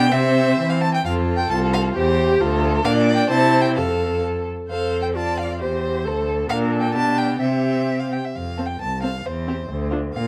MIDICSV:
0, 0, Header, 1, 5, 480
1, 0, Start_track
1, 0, Key_signature, -1, "major"
1, 0, Tempo, 458716
1, 120, Time_signature, 2, 2, 24, 8
1, 4920, Tempo, 448766
1, 7320, Tempo, 468750
1, 8760, Tempo, 447761
1, 10820, End_track
2, 0, Start_track
2, 0, Title_t, "Violin"
2, 0, Program_c, 0, 40
2, 0, Note_on_c, 0, 79, 114
2, 122, Note_on_c, 0, 76, 107
2, 137, Note_off_c, 0, 79, 0
2, 729, Note_on_c, 0, 77, 89
2, 744, Note_off_c, 0, 76, 0
2, 844, Note_on_c, 0, 81, 99
2, 860, Note_off_c, 0, 77, 0
2, 971, Note_off_c, 0, 81, 0
2, 982, Note_on_c, 0, 79, 83
2, 1094, Note_off_c, 0, 79, 0
2, 1100, Note_on_c, 0, 77, 89
2, 1184, Note_off_c, 0, 77, 0
2, 1427, Note_on_c, 0, 79, 85
2, 1572, Note_off_c, 0, 79, 0
2, 1578, Note_on_c, 0, 81, 92
2, 1662, Note_off_c, 0, 81, 0
2, 1816, Note_on_c, 0, 77, 99
2, 1899, Note_off_c, 0, 77, 0
2, 2060, Note_on_c, 0, 72, 90
2, 2744, Note_off_c, 0, 72, 0
2, 2979, Note_on_c, 0, 77, 103
2, 3062, Note_off_c, 0, 77, 0
2, 3291, Note_on_c, 0, 79, 93
2, 3445, Note_off_c, 0, 79, 0
2, 3451, Note_on_c, 0, 81, 98
2, 3777, Note_on_c, 0, 79, 86
2, 3793, Note_off_c, 0, 81, 0
2, 3925, Note_off_c, 0, 79, 0
2, 3931, Note_on_c, 0, 77, 72
2, 4415, Note_off_c, 0, 77, 0
2, 4922, Note_on_c, 0, 77, 71
2, 5221, Note_off_c, 0, 77, 0
2, 5260, Note_on_c, 0, 79, 63
2, 5321, Note_off_c, 0, 79, 0
2, 5407, Note_on_c, 0, 81, 76
2, 5640, Note_on_c, 0, 77, 74
2, 5656, Note_off_c, 0, 81, 0
2, 5882, Note_off_c, 0, 77, 0
2, 5895, Note_on_c, 0, 72, 70
2, 6593, Note_off_c, 0, 72, 0
2, 6837, Note_on_c, 0, 77, 92
2, 6922, Note_off_c, 0, 77, 0
2, 7165, Note_on_c, 0, 79, 74
2, 7306, Note_off_c, 0, 79, 0
2, 7312, Note_on_c, 0, 81, 94
2, 7557, Note_on_c, 0, 79, 80
2, 7573, Note_off_c, 0, 81, 0
2, 7783, Note_off_c, 0, 79, 0
2, 7789, Note_on_c, 0, 76, 75
2, 8397, Note_on_c, 0, 77, 60
2, 8413, Note_off_c, 0, 76, 0
2, 8519, Note_on_c, 0, 79, 63
2, 8535, Note_off_c, 0, 77, 0
2, 8649, Note_on_c, 0, 76, 58
2, 8665, Note_off_c, 0, 79, 0
2, 8767, Note_on_c, 0, 77, 67
2, 8783, Note_off_c, 0, 76, 0
2, 9087, Note_on_c, 0, 79, 62
2, 9103, Note_off_c, 0, 77, 0
2, 9245, Note_off_c, 0, 79, 0
2, 9251, Note_on_c, 0, 81, 71
2, 9475, Note_off_c, 0, 81, 0
2, 9481, Note_on_c, 0, 77, 69
2, 9733, Note_on_c, 0, 72, 65
2, 9749, Note_off_c, 0, 77, 0
2, 10443, Note_off_c, 0, 72, 0
2, 10673, Note_on_c, 0, 77, 69
2, 10820, Note_off_c, 0, 77, 0
2, 10820, End_track
3, 0, Start_track
3, 0, Title_t, "Violin"
3, 0, Program_c, 1, 40
3, 0, Note_on_c, 1, 67, 89
3, 105, Note_off_c, 1, 67, 0
3, 117, Note_on_c, 1, 72, 83
3, 835, Note_off_c, 1, 72, 0
3, 1094, Note_on_c, 1, 69, 80
3, 2010, Note_off_c, 1, 69, 0
3, 2040, Note_on_c, 1, 67, 79
3, 2518, Note_on_c, 1, 69, 86
3, 2533, Note_off_c, 1, 67, 0
3, 2986, Note_on_c, 1, 74, 100
3, 3002, Note_off_c, 1, 69, 0
3, 3447, Note_off_c, 1, 74, 0
3, 3454, Note_on_c, 1, 72, 83
3, 3952, Note_on_c, 1, 69, 67
3, 3968, Note_off_c, 1, 72, 0
3, 4680, Note_off_c, 1, 69, 0
3, 4913, Note_on_c, 1, 72, 53
3, 5364, Note_off_c, 1, 72, 0
3, 5401, Note_on_c, 1, 74, 52
3, 5873, Note_off_c, 1, 74, 0
3, 5890, Note_on_c, 1, 72, 56
3, 6388, Note_on_c, 1, 69, 57
3, 6404, Note_off_c, 1, 72, 0
3, 6845, Note_off_c, 1, 69, 0
3, 6851, Note_on_c, 1, 70, 66
3, 7083, Note_on_c, 1, 69, 59
3, 7099, Note_off_c, 1, 70, 0
3, 7323, Note_on_c, 1, 67, 61
3, 7339, Note_off_c, 1, 69, 0
3, 7789, Note_off_c, 1, 67, 0
3, 7795, Note_on_c, 1, 67, 53
3, 8535, Note_off_c, 1, 67, 0
3, 9002, Note_on_c, 1, 69, 39
3, 9080, Note_off_c, 1, 69, 0
3, 9486, Note_on_c, 1, 69, 43
3, 9562, Note_off_c, 1, 69, 0
3, 9974, Note_on_c, 1, 67, 49
3, 10047, Note_off_c, 1, 67, 0
3, 10431, Note_on_c, 1, 65, 45
3, 10509, Note_off_c, 1, 65, 0
3, 10820, End_track
4, 0, Start_track
4, 0, Title_t, "Viola"
4, 0, Program_c, 2, 41
4, 0, Note_on_c, 2, 62, 82
4, 114, Note_off_c, 2, 62, 0
4, 123, Note_on_c, 2, 60, 67
4, 867, Note_off_c, 2, 60, 0
4, 1092, Note_on_c, 2, 65, 61
4, 1541, Note_off_c, 2, 65, 0
4, 1578, Note_on_c, 2, 65, 70
4, 2048, Note_on_c, 2, 67, 71
4, 2064, Note_off_c, 2, 65, 0
4, 2283, Note_off_c, 2, 67, 0
4, 2289, Note_on_c, 2, 67, 82
4, 2524, Note_on_c, 2, 65, 74
4, 2540, Note_off_c, 2, 67, 0
4, 2976, Note_off_c, 2, 65, 0
4, 2982, Note_on_c, 2, 62, 72
4, 3422, Note_off_c, 2, 62, 0
4, 3462, Note_on_c, 2, 64, 78
4, 3954, Note_on_c, 2, 69, 63
4, 3970, Note_off_c, 2, 64, 0
4, 4711, Note_off_c, 2, 69, 0
4, 4924, Note_on_c, 2, 69, 50
4, 5410, Note_on_c, 2, 65, 53
4, 5426, Note_off_c, 2, 69, 0
4, 5888, Note_on_c, 2, 67, 49
4, 5904, Note_off_c, 2, 65, 0
4, 6362, Note_on_c, 2, 69, 56
4, 6378, Note_off_c, 2, 67, 0
4, 6837, Note_off_c, 2, 69, 0
4, 6845, Note_on_c, 2, 62, 58
4, 7288, Note_off_c, 2, 62, 0
4, 7312, Note_on_c, 2, 62, 63
4, 7780, Note_off_c, 2, 62, 0
4, 7796, Note_on_c, 2, 60, 54
4, 8535, Note_off_c, 2, 60, 0
4, 9011, Note_on_c, 2, 60, 44
4, 9087, Note_off_c, 2, 60, 0
4, 9485, Note_on_c, 2, 60, 48
4, 9561, Note_off_c, 2, 60, 0
4, 9963, Note_on_c, 2, 60, 49
4, 10038, Note_off_c, 2, 60, 0
4, 10443, Note_on_c, 2, 62, 54
4, 10519, Note_off_c, 2, 62, 0
4, 10820, End_track
5, 0, Start_track
5, 0, Title_t, "Cello"
5, 0, Program_c, 3, 42
5, 0, Note_on_c, 3, 47, 87
5, 129, Note_on_c, 3, 48, 77
5, 144, Note_off_c, 3, 47, 0
5, 606, Note_off_c, 3, 48, 0
5, 613, Note_on_c, 3, 52, 67
5, 1090, Note_off_c, 3, 52, 0
5, 1105, Note_on_c, 3, 41, 75
5, 1572, Note_off_c, 3, 41, 0
5, 1582, Note_on_c, 3, 36, 71
5, 2046, Note_off_c, 3, 36, 0
5, 2063, Note_on_c, 3, 40, 77
5, 2518, Note_off_c, 3, 40, 0
5, 2527, Note_on_c, 3, 38, 82
5, 2979, Note_off_c, 3, 38, 0
5, 2992, Note_on_c, 3, 46, 81
5, 3427, Note_off_c, 3, 46, 0
5, 3456, Note_on_c, 3, 48, 71
5, 3944, Note_on_c, 3, 41, 61
5, 3960, Note_off_c, 3, 48, 0
5, 4706, Note_off_c, 3, 41, 0
5, 4929, Note_on_c, 3, 41, 54
5, 5895, Note_on_c, 3, 40, 58
5, 5911, Note_off_c, 3, 41, 0
5, 6371, Note_on_c, 3, 38, 59
5, 6387, Note_off_c, 3, 40, 0
5, 6839, Note_off_c, 3, 38, 0
5, 6845, Note_on_c, 3, 46, 66
5, 7321, Note_on_c, 3, 47, 63
5, 7337, Note_off_c, 3, 46, 0
5, 7784, Note_off_c, 3, 47, 0
5, 7790, Note_on_c, 3, 48, 52
5, 8532, Note_off_c, 3, 48, 0
5, 8764, Note_on_c, 3, 41, 54
5, 9167, Note_off_c, 3, 41, 0
5, 9258, Note_on_c, 3, 36, 51
5, 9650, Note_off_c, 3, 36, 0
5, 9728, Note_on_c, 3, 40, 59
5, 10120, Note_off_c, 3, 40, 0
5, 10200, Note_on_c, 3, 38, 58
5, 10599, Note_off_c, 3, 38, 0
5, 10685, Note_on_c, 3, 46, 62
5, 10820, Note_off_c, 3, 46, 0
5, 10820, End_track
0, 0, End_of_file